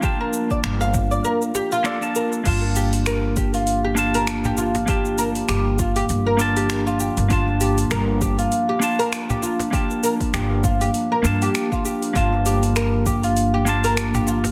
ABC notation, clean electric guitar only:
X:1
M:4/4
L:1/16
Q:"Swing 16ths" 1/4=99
K:Gm
V:1 name="Clean electric guitar"
[B,DFa]8- [B,DFa]2 z2 [B,DFA] [B,DFa]3 | [B,DFa]8- [B,DFa]2 [B,DFa]6 | [B,DFa]8- [B,DFa]2 [B,DFa]6 | [B,DFa]8- [B,DFa]2 [B,DFa]6 |
[B,DFa]8- [B,DFa]2 [B,DFa]6 | [B,DFa]8- [B,DFa]2 [B,DFa]6 |]